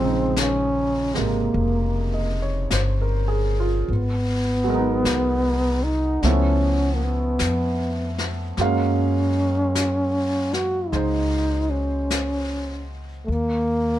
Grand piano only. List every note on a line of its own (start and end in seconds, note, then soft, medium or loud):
0.00 3.90 C#3 soft
0.00 3.86 F3 soft
0.00 1.12 G#3 soft
0.00 3.90 A4 soft
0.04 3.91 D#4 soft
1.14 3.89 C3 soft
1.14 3.88 G#3 soft
1.14 3.88 A#3 soft
2.14 2.49 D#5 soft
2.42 2.83 C#5 soft
2.73 3.27 C5 soft
3.02 3.51 A#4 soft
3.28 3.65 G#4 soft
3.60 4.00 F4 soft
4.64 6.21 F#3 medium
4.64 6.22 G#3 soft
4.70 6.24 B3 soft
4.70 6.24 A#4 soft
4.75 6.26 D#4 medium
6.24 8.58 F3 soft
6.24 8.58 A3 soft
6.24 8.59 B3 soft
6.24 8.59 C#4 soft
6.24 8.58 E4 soft
8.59 13.29 F#3 soft
8.59 10.91 G#3 soft
8.59 13.29 A#3 soft
8.59 13.29 C#4 soft
8.59 13.30 F5 medium
10.92 13.28 G#3 soft
10.92 13.29 C5 soft